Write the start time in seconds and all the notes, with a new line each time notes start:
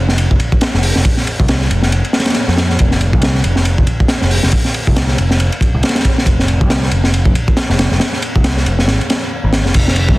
Already playing: F1
0.09 snare
0.18 ride
0.31 F1, kick
0.40 ride
0.52 kick
0.61 snare, ride
0.74 F1, snare
0.83 open hi-hat
0.96 F1, snare
1.05 kick, ride
1.17 snare
1.27 ride
1.40 C2, kick
1.48 snare, ride
1.61 snare
1.70 F1, ride
1.82 snare
1.92 ride
2.05 ride
2.13 snare, ride
2.20 snare, ride
2.26 snare, ride
2.30 snare, ride
2.34 snare, ride
2.48 F2, snare
2.58 snare, ride
2.70 snare
2.79 F1, kick, ride
2.91 snare
3.01 ride
3.13 C2, kick
3.22 snare, ride
3.35 snare
3.44 F1, ride
3.56 snare
3.65 ride
3.78 F1, kick
3.87 ride
4.00 kick
4.08 snare, ride
4.22 F1, snare
4.31 open hi-hat
4.43 F1, snare
4.52 kick, ride
4.65 snare
4.74 ride
4.87 C2, kick
4.96 snare, ride
5.08 snare
5.18 F1, ride
5.31 snare
5.40 ride
5.52 ride
5.61 kick, ride
5.74 C2
5.83 snare, ride
5.89 snare, ride
5.95 snare, ride
6.00 snare, ride
6.05 kick, ride
6.18 snare
6.26 F1, kick, ride
6.40 snare
6.48 ride
6.61 C2, kick
6.70 snare, ride
6.83 snare
6.91 F1, ride
7.04 snare
7.14 ride
7.25 F1, kick
7.35 ride
7.48 kick
7.57 snare, ride
7.70 F1, snare
7.79 snare, ride
7.91 F1, snare
8.00 snare, ride
8.13 snare
8.22 ride
8.36 C2, kick
8.44 snare, ride
8.57 snare
8.66 F1, ride
8.79 snare
8.88 G#1, snare, ride
9.01 ride
9.10 snare, ride
9.44 G#1
9.53 snare, ride
9.66 F1, snare
9.74 F1, kick, crash, ride
9.88 snare
9.96 ride
10.09 C2, kick